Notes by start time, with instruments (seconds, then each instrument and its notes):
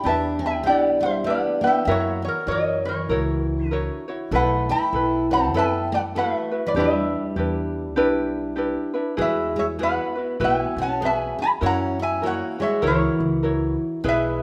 0.04 upright bass E2, steel-string acoustic guitar D4, ukulele D4 E4 G4 B4, resonator guitar played with a steel bar A5
0.09 resonator guitar played with a steel bar E5
0.39 steel-string acoustic guitar B3
0.46 resonator guitar played with a steel bar E5 G5
0.63 upright bass B1, steel-string acoustic guitar B3, ukulele D4 E4 G4, resonator guitar played with a steel bar F#5
0.69 resonator guitar played with a steel bar D5
1.01 steel-string acoustic guitar G3, resonator guitar played with a steel bar E5
1.06 resonator guitar played with a steel bar C5
1.24 steel-string acoustic guitar B3, ukulele D4 E4 G4 B4, resonator guitar played with a steel bar F#5
1.30 resonator guitar played with a steel bar D5
1.61 steel-string acoustic guitar B3, ukulele B4, resonator guitar played with a steel bar G5
1.65 ukulele D4 E4, resonator guitar played with a steel bar E5
1.85 upright bass F#2, steel-string acoustic guitar A#3, ukulele E4 F#4 A#4 C#5, resonator guitar played with a steel bar E5
1.91 resonator guitar played with a steel bar C#5
2.22 steel-string acoustic guitar E3, resonator guitar played with a steel bar C#5
2.28 resonator guitar played with a steel bar A#4
2.47 upright bass F#2, steel-string acoustic guitar F#3, ukulele E4 F#4 A#4, resonator guitar played with a steel bar D#5
2.51 resonator guitar played with a steel bar A#4, ukulele C#5
2.85 steel-string acoustic guitar E3, resonator guitar played with a steel bar A#4 C#5
3.09 upright bass C#2, ukulele E4 F#4 A#4 C#5
3.66 steel-string acoustic guitar D3, resonator guitar played with a steel bar B4
3.71 ukulele E4 F#4 A#4 C#5
4.08 ukulele E4 F#4 C#5
4.31 upright bass B1, steel-string acoustic guitar A3, ukulele E4 A4 B4, resonator guitar played with a steel bar B4
4.36 resonator guitar played with a steel bar F#5
4.69 steel-string acoustic guitar E4, resonator guitar played with a steel bar G5 B5
4.93 upright bass B1, ukulele E4 A4 B4
5.30 steel-string acoustic guitar C4, ukulele E4 F#4 B4, resonator guitar played with a steel bar F#5 A5
5.53 upright bass F#2, steel-string acoustic guitar B3, ukulele E4 A4 B4
5.57 resonator guitar played with a steel bar E5 G5
5.92 steel-string acoustic guitar A3, resonator guitar played with a steel bar D5 F#5
6.15 steel-string acoustic guitar A3, ukulele E4 F#4 A4 B4, resonator guitar played with a steel bar B4 E5
6.51 ukulele E4 F#4 B4
6.66 steel-string acoustic guitar F#3, resonator guitar played with a steel bar B4 D5
6.75 upright bass E2, steel-string acoustic guitar G3, ukulele D4 E4 G4 B4, resonator guitar played with a steel bar B4
6.80 resonator guitar played with a steel bar E5
7.36 upright bass E2, ukulele D4 E4 G4 B4
7.96 upright bass B1, ukulele D4 E4 G4 B4
8.56 ukulele D4 E4 G4 B4
8.94 ukulele D4 E4 B4
9.17 upright bass E2, steel-string acoustic guitar G#3, ukulele E4 F#4 G#4 B4
9.21 resonator guitar played with a steel bar B4 E5
9.56 steel-string acoustic guitar G#3, resonator guitar played with a steel bar C#5 E5
9.79 steel-string acoustic guitar B3, ukulele E4 F#4 G#4 B4
9.83 resonator guitar played with a steel bar B4 F#5
10.15 ukulele E4 F#4 B4
10.40 upright bass B1, steel-string acoustic guitar B3, ukulele E4 F#4 B4
10.44 resonator guitar played with a steel bar E5 G#5
10.76 upright bass B1, steel-string acoustic guitar C#4
10.82 resonator guitar played with a steel bar F#5 A5
11.01 steel-string acoustic guitar B3, ukulele F#4 G#4 B4
11.05 resonator guitar played with a steel bar E5 G#5
11.39 steel-string acoustic guitar D#4, resonator guitar played with a steel bar G#5
11.44 resonator guitar played with a steel bar B5
11.61 upright bass F#2, steel-string acoustic guitar C#4, ukulele E4 F#4 A#4 C#5
11.66 resonator guitar played with a steel bar F#5 A#5
11.99 steel-string acoustic guitar B3, resonator guitar played with a steel bar E5 G#5
12.22 steel-string acoustic guitar A#3, ukulele E4 F#4 A#4 C#5
12.26 resonator guitar played with a steel bar C#5 F#5
12.59 steel-string acoustic guitar G#3, ukulele E4 F#4 C#5, resonator guitar played with a steel bar C#5
12.63 resonator guitar played with a steel bar E5
12.82 upright bass C#2, steel-string acoustic guitar E3, ukulele E4 F#4 A#4 C#5
12.87 resonator guitar played with a steel bar A#4 C#5
13.20 upright bass C#2
13.43 ukulele E4 F#4 A#4 C#5
14.04 upright bass B1, steel-string acoustic guitar G#3, ukulele E4 G#4 B4 E5
14.08 resonator guitar played with a steel bar B4 E5